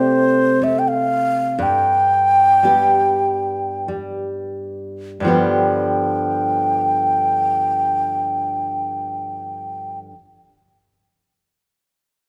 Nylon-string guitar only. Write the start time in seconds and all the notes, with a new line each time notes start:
Already playing: C3 A3 C4 G4
0.62 A3
1.59 G2
2.63 G3 B3 G4
3.88 G3
5.20 G2 D3
5.24 F3 G3 B3 G4